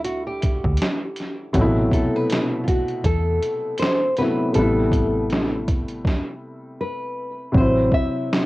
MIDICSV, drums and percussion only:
0, 0, Header, 1, 2, 480
1, 0, Start_track
1, 0, Tempo, 750000
1, 992, Time_signature, 4, 2, 24, 8
1, 5414, End_track
2, 0, Start_track
2, 0, Title_t, "Drums"
2, 29, Note_on_c, 9, 42, 78
2, 93, Note_off_c, 9, 42, 0
2, 272, Note_on_c, 9, 42, 66
2, 278, Note_on_c, 9, 36, 84
2, 336, Note_off_c, 9, 42, 0
2, 342, Note_off_c, 9, 36, 0
2, 413, Note_on_c, 9, 36, 87
2, 477, Note_off_c, 9, 36, 0
2, 495, Note_on_c, 9, 42, 70
2, 525, Note_on_c, 9, 38, 104
2, 559, Note_off_c, 9, 42, 0
2, 589, Note_off_c, 9, 38, 0
2, 744, Note_on_c, 9, 42, 51
2, 769, Note_on_c, 9, 38, 36
2, 808, Note_off_c, 9, 42, 0
2, 833, Note_off_c, 9, 38, 0
2, 985, Note_on_c, 9, 42, 74
2, 987, Note_on_c, 9, 36, 104
2, 1049, Note_off_c, 9, 42, 0
2, 1051, Note_off_c, 9, 36, 0
2, 1225, Note_on_c, 9, 36, 92
2, 1235, Note_on_c, 9, 42, 64
2, 1289, Note_off_c, 9, 36, 0
2, 1299, Note_off_c, 9, 42, 0
2, 1470, Note_on_c, 9, 42, 84
2, 1487, Note_on_c, 9, 38, 120
2, 1534, Note_off_c, 9, 42, 0
2, 1551, Note_off_c, 9, 38, 0
2, 1714, Note_on_c, 9, 36, 83
2, 1714, Note_on_c, 9, 42, 68
2, 1778, Note_off_c, 9, 36, 0
2, 1778, Note_off_c, 9, 42, 0
2, 1845, Note_on_c, 9, 42, 31
2, 1909, Note_off_c, 9, 42, 0
2, 1947, Note_on_c, 9, 36, 87
2, 1948, Note_on_c, 9, 42, 76
2, 2011, Note_off_c, 9, 36, 0
2, 2012, Note_off_c, 9, 42, 0
2, 2191, Note_on_c, 9, 42, 66
2, 2255, Note_off_c, 9, 42, 0
2, 2416, Note_on_c, 9, 42, 71
2, 2446, Note_on_c, 9, 38, 110
2, 2480, Note_off_c, 9, 42, 0
2, 2510, Note_off_c, 9, 38, 0
2, 2666, Note_on_c, 9, 42, 52
2, 2691, Note_on_c, 9, 38, 34
2, 2730, Note_off_c, 9, 42, 0
2, 2755, Note_off_c, 9, 38, 0
2, 2907, Note_on_c, 9, 42, 77
2, 2971, Note_off_c, 9, 42, 0
2, 3146, Note_on_c, 9, 36, 95
2, 3154, Note_on_c, 9, 42, 63
2, 3210, Note_off_c, 9, 36, 0
2, 3218, Note_off_c, 9, 42, 0
2, 3391, Note_on_c, 9, 42, 86
2, 3408, Note_on_c, 9, 38, 116
2, 3455, Note_off_c, 9, 42, 0
2, 3472, Note_off_c, 9, 38, 0
2, 3635, Note_on_c, 9, 36, 92
2, 3635, Note_on_c, 9, 42, 65
2, 3699, Note_off_c, 9, 36, 0
2, 3699, Note_off_c, 9, 42, 0
2, 3766, Note_on_c, 9, 42, 32
2, 3830, Note_off_c, 9, 42, 0
2, 3871, Note_on_c, 9, 36, 101
2, 3888, Note_on_c, 9, 38, 86
2, 3935, Note_off_c, 9, 36, 0
2, 3952, Note_off_c, 9, 38, 0
2, 4829, Note_on_c, 9, 36, 105
2, 4893, Note_off_c, 9, 36, 0
2, 5067, Note_on_c, 9, 36, 91
2, 5131, Note_off_c, 9, 36, 0
2, 5331, Note_on_c, 9, 38, 111
2, 5395, Note_off_c, 9, 38, 0
2, 5414, End_track
0, 0, End_of_file